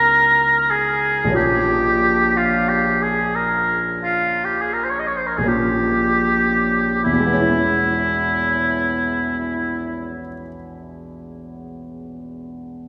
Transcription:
0, 0, Header, 1, 3, 480
1, 0, Start_track
1, 0, Tempo, 1312910
1, 495, Time_signature, 4, 2, 24, 8
1, 980, Tempo, 1363636
1, 1460, Tempo, 1459854
1, 1940, Tempo, 1578947
1, 2420, Tempo, 1526718
1, 4244, End_track
2, 0, Start_track
2, 0, Title_t, "Oboe"
2, 0, Program_c, 0, 68
2, 0, Note_on_c, 0, 70, 86
2, 256, Note_on_c, 0, 68, 69
2, 262, Note_off_c, 0, 70, 0
2, 494, Note_off_c, 0, 68, 0
2, 496, Note_on_c, 0, 67, 73
2, 865, Note_on_c, 0, 65, 59
2, 871, Note_off_c, 0, 67, 0
2, 981, Note_on_c, 0, 67, 59
2, 986, Note_off_c, 0, 65, 0
2, 1101, Note_on_c, 0, 68, 53
2, 1106, Note_off_c, 0, 67, 0
2, 1217, Note_on_c, 0, 70, 60
2, 1222, Note_off_c, 0, 68, 0
2, 1374, Note_off_c, 0, 70, 0
2, 1455, Note_on_c, 0, 65, 62
2, 1591, Note_on_c, 0, 67, 46
2, 1596, Note_off_c, 0, 65, 0
2, 1646, Note_on_c, 0, 68, 40
2, 1651, Note_off_c, 0, 67, 0
2, 1687, Note_on_c, 0, 70, 43
2, 1692, Note_off_c, 0, 68, 0
2, 1721, Note_on_c, 0, 72, 37
2, 1726, Note_off_c, 0, 70, 0
2, 1742, Note_on_c, 0, 73, 35
2, 1747, Note_off_c, 0, 72, 0
2, 1771, Note_on_c, 0, 75, 37
2, 1776, Note_off_c, 0, 73, 0
2, 1797, Note_on_c, 0, 73, 36
2, 1802, Note_off_c, 0, 75, 0
2, 1829, Note_on_c, 0, 72, 37
2, 1834, Note_off_c, 0, 73, 0
2, 1863, Note_on_c, 0, 70, 34
2, 1868, Note_off_c, 0, 72, 0
2, 1897, Note_on_c, 0, 68, 41
2, 1902, Note_off_c, 0, 70, 0
2, 1932, Note_on_c, 0, 67, 60
2, 1937, Note_off_c, 0, 68, 0
2, 2404, Note_off_c, 0, 67, 0
2, 2406, Note_on_c, 0, 64, 56
2, 3392, Note_off_c, 0, 64, 0
2, 4244, End_track
3, 0, Start_track
3, 0, Title_t, "Grand piano"
3, 0, Program_c, 1, 0
3, 0, Control_c, 1, 64, 127
3, 0, Note_on_c, 1, 37, 42
3, 0, Note_on_c, 1, 54, 34
3, 0, Note_on_c, 1, 59, 37
3, 0, Note_on_c, 1, 63, 34
3, 0, Note_on_c, 1, 64, 35
3, 455, Note_on_c, 1, 34, 49
3, 461, Note_off_c, 1, 37, 0
3, 464, Note_off_c, 1, 54, 0
3, 467, Note_on_c, 1, 53, 37
3, 469, Note_off_c, 1, 59, 0
3, 472, Note_on_c, 1, 58, 36
3, 473, Note_off_c, 1, 63, 0
3, 476, Note_off_c, 1, 64, 0
3, 481, Note_on_c, 1, 61, 37
3, 489, Note_on_c, 1, 65, 41
3, 503, Control_c, 1, 64, 0
3, 577, Control_c, 1, 64, 127
3, 1895, Note_off_c, 1, 34, 0
3, 1900, Note_on_c, 1, 34, 42
3, 1906, Note_off_c, 1, 53, 0
3, 1911, Note_on_c, 1, 53, 33
3, 1912, Note_off_c, 1, 58, 0
3, 1917, Note_off_c, 1, 61, 0
3, 1917, Note_on_c, 1, 58, 35
3, 1922, Note_on_c, 1, 61, 30
3, 1925, Note_off_c, 1, 65, 0
3, 1932, Note_on_c, 1, 65, 35
3, 2390, Note_off_c, 1, 34, 0
3, 2395, Note_off_c, 1, 53, 0
3, 2397, Note_off_c, 1, 58, 0
3, 2400, Note_off_c, 1, 61, 0
3, 2404, Note_off_c, 1, 65, 0
3, 2413, Note_on_c, 1, 40, 47
3, 2428, Control_c, 1, 64, 0
3, 2436, Note_on_c, 1, 47, 41
3, 2457, Note_on_c, 1, 56, 39
3, 2477, Note_on_c, 1, 59, 39
3, 2489, Control_c, 1, 64, 127
3, 2499, Note_on_c, 1, 61, 39
3, 2520, Note_on_c, 1, 64, 39
3, 3399, Note_off_c, 1, 40, 0
3, 3422, Note_off_c, 1, 47, 0
3, 3443, Note_off_c, 1, 56, 0
3, 3464, Note_off_c, 1, 59, 0
3, 3486, Note_off_c, 1, 61, 0
3, 3506, Note_off_c, 1, 64, 0
3, 4244, End_track
0, 0, End_of_file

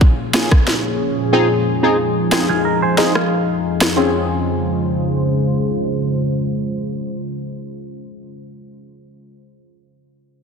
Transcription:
0, 0, Header, 1, 5, 480
1, 0, Start_track
1, 0, Key_signature, -5, "major"
1, 0, Tempo, 659341
1, 969, Time_signature, 4, 2, 24, 8
1, 7594, End_track
2, 0, Start_track
2, 0, Title_t, "Clean electric guitar"
2, 0, Program_c, 0, 27
2, 1815, Note_on_c, 0, 68, 73
2, 1820, Note_on_c, 0, 65, 61
2, 1923, Note_off_c, 0, 68, 0
2, 1925, Note_off_c, 0, 65, 0
2, 1929, Note_on_c, 0, 70, 75
2, 2050, Note_off_c, 0, 70, 0
2, 2056, Note_on_c, 0, 72, 85
2, 2060, Note_on_c, 0, 68, 72
2, 2163, Note_off_c, 0, 72, 0
2, 2165, Note_off_c, 0, 68, 0
2, 2169, Note_on_c, 0, 75, 80
2, 2174, Note_on_c, 0, 72, 68
2, 2290, Note_off_c, 0, 75, 0
2, 2292, Note_off_c, 0, 72, 0
2, 2296, Note_on_c, 0, 77, 70
2, 2860, Note_off_c, 0, 77, 0
2, 7594, End_track
3, 0, Start_track
3, 0, Title_t, "Synth stab"
3, 0, Program_c, 1, 62
3, 245, Note_on_c, 1, 58, 76
3, 246, Note_on_c, 1, 61, 70
3, 248, Note_on_c, 1, 65, 73
3, 250, Note_on_c, 1, 68, 83
3, 356, Note_off_c, 1, 58, 0
3, 357, Note_off_c, 1, 61, 0
3, 358, Note_off_c, 1, 65, 0
3, 359, Note_off_c, 1, 68, 0
3, 965, Note_on_c, 1, 60, 95
3, 966, Note_on_c, 1, 63, 85
3, 968, Note_on_c, 1, 65, 86
3, 970, Note_on_c, 1, 68, 101
3, 1076, Note_off_c, 1, 60, 0
3, 1077, Note_off_c, 1, 63, 0
3, 1078, Note_off_c, 1, 65, 0
3, 1079, Note_off_c, 1, 68, 0
3, 1331, Note_on_c, 1, 60, 76
3, 1333, Note_on_c, 1, 63, 69
3, 1334, Note_on_c, 1, 65, 71
3, 1336, Note_on_c, 1, 68, 85
3, 1430, Note_off_c, 1, 60, 0
3, 1431, Note_off_c, 1, 63, 0
3, 1432, Note_off_c, 1, 65, 0
3, 1433, Note_off_c, 1, 68, 0
3, 1683, Note_on_c, 1, 60, 74
3, 1685, Note_on_c, 1, 63, 70
3, 1687, Note_on_c, 1, 65, 71
3, 1688, Note_on_c, 1, 68, 86
3, 1795, Note_off_c, 1, 60, 0
3, 1796, Note_off_c, 1, 63, 0
3, 1797, Note_off_c, 1, 65, 0
3, 1798, Note_off_c, 1, 68, 0
3, 2164, Note_on_c, 1, 60, 75
3, 2166, Note_on_c, 1, 63, 72
3, 2168, Note_on_c, 1, 65, 70
3, 2169, Note_on_c, 1, 68, 87
3, 2276, Note_off_c, 1, 60, 0
3, 2277, Note_off_c, 1, 63, 0
3, 2277, Note_off_c, 1, 65, 0
3, 2278, Note_off_c, 1, 68, 0
3, 2884, Note_on_c, 1, 60, 86
3, 2886, Note_on_c, 1, 61, 74
3, 2889, Note_on_c, 1, 65, 75
3, 2892, Note_on_c, 1, 68, 90
3, 5869, Note_off_c, 1, 60, 0
3, 5870, Note_off_c, 1, 61, 0
3, 5872, Note_off_c, 1, 65, 0
3, 5873, Note_off_c, 1, 68, 0
3, 7594, End_track
4, 0, Start_track
4, 0, Title_t, "Ambient pad"
4, 0, Program_c, 2, 92
4, 0, Note_on_c, 2, 46, 78
4, 0, Note_on_c, 2, 53, 73
4, 0, Note_on_c, 2, 61, 76
4, 0, Note_on_c, 2, 68, 86
4, 950, Note_off_c, 2, 46, 0
4, 950, Note_off_c, 2, 61, 0
4, 968, Note_on_c, 2, 41, 79
4, 969, Note_on_c, 2, 63, 74
4, 2860, Note_off_c, 2, 53, 0
4, 2860, Note_off_c, 2, 68, 0
4, 2869, Note_off_c, 2, 41, 0
4, 2869, Note_off_c, 2, 63, 0
4, 2890, Note_on_c, 2, 49, 79
4, 2891, Note_on_c, 2, 56, 72
4, 2891, Note_on_c, 2, 65, 71
4, 2891, Note_on_c, 2, 72, 87
4, 5363, Note_off_c, 2, 49, 0
4, 5363, Note_off_c, 2, 56, 0
4, 5363, Note_off_c, 2, 65, 0
4, 5363, Note_off_c, 2, 72, 0
4, 7594, End_track
5, 0, Start_track
5, 0, Title_t, "Drums"
5, 8, Note_on_c, 9, 36, 81
5, 81, Note_off_c, 9, 36, 0
5, 249, Note_on_c, 9, 38, 108
5, 252, Note_on_c, 9, 37, 83
5, 321, Note_off_c, 9, 38, 0
5, 324, Note_off_c, 9, 37, 0
5, 375, Note_on_c, 9, 36, 88
5, 376, Note_on_c, 9, 37, 90
5, 447, Note_off_c, 9, 36, 0
5, 449, Note_off_c, 9, 37, 0
5, 490, Note_on_c, 9, 38, 59
5, 563, Note_off_c, 9, 38, 0
5, 1689, Note_on_c, 9, 38, 96
5, 1692, Note_on_c, 9, 37, 81
5, 1762, Note_off_c, 9, 38, 0
5, 1765, Note_off_c, 9, 37, 0
5, 2170, Note_on_c, 9, 38, 59
5, 2242, Note_off_c, 9, 38, 0
5, 2296, Note_on_c, 9, 37, 84
5, 2369, Note_off_c, 9, 37, 0
5, 2775, Note_on_c, 9, 38, 102
5, 2778, Note_on_c, 9, 37, 81
5, 2848, Note_off_c, 9, 38, 0
5, 2851, Note_off_c, 9, 37, 0
5, 7594, End_track
0, 0, End_of_file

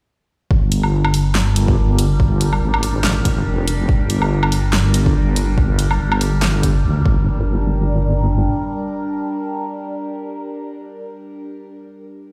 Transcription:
0, 0, Header, 1, 4, 480
1, 0, Start_track
1, 0, Tempo, 422535
1, 575, Time_signature, 4, 2, 24, 8
1, 13998, End_track
2, 0, Start_track
2, 0, Title_t, "Synth drone"
2, 0, Program_c, 0, 95
2, 575, Note_on_c, 0, 62, 73
2, 576, Note_on_c, 0, 55, 79
2, 576, Note_on_c, 0, 70, 89
2, 7970, Note_off_c, 0, 55, 0
2, 7970, Note_off_c, 0, 62, 0
2, 7970, Note_off_c, 0, 70, 0
2, 8011, Note_on_c, 0, 62, 74
2, 8011, Note_on_c, 0, 70, 89
2, 8012, Note_on_c, 0, 55, 78
2, 12956, Note_off_c, 0, 62, 0
2, 12956, Note_off_c, 0, 70, 0
2, 12957, Note_off_c, 0, 55, 0
2, 13998, End_track
3, 0, Start_track
3, 0, Title_t, "Wobble bass"
3, 0, Program_c, 1, 39
3, 575, Note_on_c, 1, 31, 97
3, 1998, Note_off_c, 1, 31, 0
3, 2016, Note_on_c, 1, 31, 97
3, 2959, Note_off_c, 1, 31, 0
3, 2974, Note_on_c, 1, 32, 98
3, 3918, Note_off_c, 1, 32, 0
3, 3936, Note_on_c, 1, 29, 96
3, 4399, Note_off_c, 1, 29, 0
3, 4417, Note_on_c, 1, 31, 99
3, 5839, Note_off_c, 1, 31, 0
3, 5855, Note_on_c, 1, 31, 94
3, 6798, Note_off_c, 1, 31, 0
3, 6816, Note_on_c, 1, 31, 102
3, 7759, Note_off_c, 1, 31, 0
3, 7777, Note_on_c, 1, 38, 98
3, 8007, Note_off_c, 1, 38, 0
3, 8014, Note_on_c, 1, 31, 100
3, 9649, Note_off_c, 1, 31, 0
3, 13998, End_track
4, 0, Start_track
4, 0, Title_t, "Drums"
4, 576, Note_on_c, 9, 36, 121
4, 689, Note_off_c, 9, 36, 0
4, 815, Note_on_c, 9, 42, 84
4, 928, Note_off_c, 9, 42, 0
4, 948, Note_on_c, 9, 77, 52
4, 1061, Note_off_c, 9, 77, 0
4, 1188, Note_on_c, 9, 77, 80
4, 1293, Note_on_c, 9, 46, 95
4, 1301, Note_off_c, 9, 77, 0
4, 1407, Note_off_c, 9, 46, 0
4, 1533, Note_on_c, 9, 38, 124
4, 1533, Note_on_c, 9, 39, 98
4, 1647, Note_off_c, 9, 38, 0
4, 1647, Note_off_c, 9, 39, 0
4, 1774, Note_on_c, 9, 42, 80
4, 1887, Note_off_c, 9, 42, 0
4, 1912, Note_on_c, 9, 36, 109
4, 2026, Note_off_c, 9, 36, 0
4, 2255, Note_on_c, 9, 42, 88
4, 2369, Note_off_c, 9, 42, 0
4, 2497, Note_on_c, 9, 36, 127
4, 2610, Note_off_c, 9, 36, 0
4, 2735, Note_on_c, 9, 42, 79
4, 2849, Note_off_c, 9, 42, 0
4, 2870, Note_on_c, 9, 77, 54
4, 2984, Note_off_c, 9, 77, 0
4, 3110, Note_on_c, 9, 77, 81
4, 3213, Note_on_c, 9, 46, 91
4, 3224, Note_off_c, 9, 77, 0
4, 3327, Note_off_c, 9, 46, 0
4, 3453, Note_on_c, 9, 38, 122
4, 3453, Note_on_c, 9, 39, 96
4, 3567, Note_off_c, 9, 38, 0
4, 3567, Note_off_c, 9, 39, 0
4, 3695, Note_on_c, 9, 42, 81
4, 3696, Note_on_c, 9, 36, 66
4, 3808, Note_off_c, 9, 42, 0
4, 3810, Note_off_c, 9, 36, 0
4, 4175, Note_on_c, 9, 42, 87
4, 4289, Note_off_c, 9, 42, 0
4, 4417, Note_on_c, 9, 36, 125
4, 4530, Note_off_c, 9, 36, 0
4, 4655, Note_on_c, 9, 42, 80
4, 4769, Note_off_c, 9, 42, 0
4, 4790, Note_on_c, 9, 77, 60
4, 4904, Note_off_c, 9, 77, 0
4, 5030, Note_on_c, 9, 77, 85
4, 5135, Note_on_c, 9, 46, 91
4, 5144, Note_off_c, 9, 77, 0
4, 5249, Note_off_c, 9, 46, 0
4, 5373, Note_on_c, 9, 38, 127
4, 5373, Note_on_c, 9, 39, 94
4, 5486, Note_off_c, 9, 38, 0
4, 5486, Note_off_c, 9, 39, 0
4, 5613, Note_on_c, 9, 42, 80
4, 5726, Note_off_c, 9, 42, 0
4, 5751, Note_on_c, 9, 36, 112
4, 5864, Note_off_c, 9, 36, 0
4, 6093, Note_on_c, 9, 42, 82
4, 6206, Note_off_c, 9, 42, 0
4, 6335, Note_on_c, 9, 36, 126
4, 6449, Note_off_c, 9, 36, 0
4, 6574, Note_on_c, 9, 42, 75
4, 6688, Note_off_c, 9, 42, 0
4, 6710, Note_on_c, 9, 77, 60
4, 6824, Note_off_c, 9, 77, 0
4, 6949, Note_on_c, 9, 77, 89
4, 7055, Note_on_c, 9, 46, 94
4, 7062, Note_off_c, 9, 77, 0
4, 7169, Note_off_c, 9, 46, 0
4, 7295, Note_on_c, 9, 38, 124
4, 7295, Note_on_c, 9, 39, 90
4, 7408, Note_off_c, 9, 38, 0
4, 7408, Note_off_c, 9, 39, 0
4, 7535, Note_on_c, 9, 36, 66
4, 7536, Note_on_c, 9, 42, 76
4, 7649, Note_off_c, 9, 36, 0
4, 7650, Note_off_c, 9, 42, 0
4, 8015, Note_on_c, 9, 36, 112
4, 8129, Note_off_c, 9, 36, 0
4, 13998, End_track
0, 0, End_of_file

